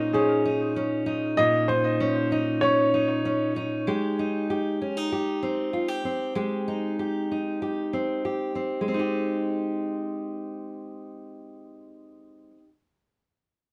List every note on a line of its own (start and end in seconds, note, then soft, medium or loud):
0.00 1.37 A#2 medium
0.00 0.13 C#4 medium
0.00 0.45 D#4 medium
0.13 0.75 C#4 medium
0.13 0.71 G#4 medium
0.45 1.06 D#4 medium
0.76 1.99 C#4 medium
1.06 1.68 D#4 medium
1.37 3.87 A#2 medium
1.37 1.66 D#5 loud
1.68 2.32 D#4 medium
1.68 2.27 C5 loud
2.00 2.62 C#4 medium
2.32 2.94 D#4 medium
2.61 3.24 C#4 medium
2.61 3.51 C#5 loud
2.94 3.56 D#4 medium
3.25 3.93 C#4 medium
3.56 4.19 D#4 medium
3.87 6.35 G#3 medium
3.87 4.50 G4 medium
4.19 4.81 D#4 medium
4.50 5.12 G4 medium
4.82 4.97 C#4 medium
4.97 6.67 D#4 soft
5.12 5.73 G4 medium
5.43 6.04 C4 medium
5.73 5.88 F4 medium
5.88 6.35 G4 medium
6.05 7.93 C4 soft
6.35 8.81 G#3 medium
6.35 6.99 G4 medium
6.68 7.31 D#4 medium
6.99 7.62 G4 medium
7.31 8.94 D#4 soft
7.62 8.24 G4 medium
7.93 8.55 C4 soft
8.25 8.99 G4 medium
8.55 8.88 C4 soft
8.81 12.51 G#3 medium
8.88 12.58 C4 medium
8.94 12.64 D#4 medium
8.99 12.69 G4 medium